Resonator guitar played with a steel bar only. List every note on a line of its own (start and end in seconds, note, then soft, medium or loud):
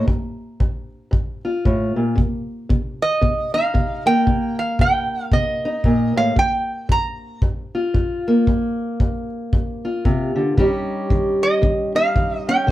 3.02 3.54 D#5 medium
3.54 4.03 F5 medium
4.07 4.59 G5 loud
4.59 4.79 F5 medium
4.81 5.24 G5 medium
5.24 5.35 F5 medium
5.33 6.17 D#5 medium
6.17 6.38 F5 medium
6.39 6.87 G5 loud
6.92 7.40 A#5 loud
11.43 11.92 D#5 medium
11.96 12.48 F5 medium
12.49 12.68 G5 medium